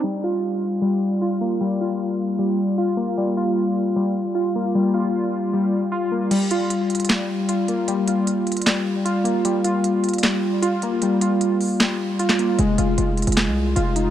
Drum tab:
CC |--------------------------------|--------------------------------|--------------------------------|--------------------------------|
HH |--------------------------------|--------------------------------|--------------------------------|--------------------------------|
CP |--------------------------------|--------------------------------|--------------------------------|--------------------------------|
SD |--------------------------------|--------------------------------|--------------------------------|--------------------------------|

CC |x-------------------------------|--------------------------------|--------------------------------|--------------------------------|
HH |x---x---x---xxxxx-------x---x---|x---x---x---xxxxx-------x---x---|x---x---x---xxxxx-------x---x---|x---x---x---o---x-------x---x---|
CP |----------------x---------------|----------------x---------------|----------------x---------------|----------------x---------x-----|
SD |----------------o---------------|----------------o---------------|----------------o---------------|----------------o---------o-----|

CC |--------------------------------|
HH |x---x---x---xxxx--------x---x---|
CP |----------------x---------------|
SD |----------------o---------------|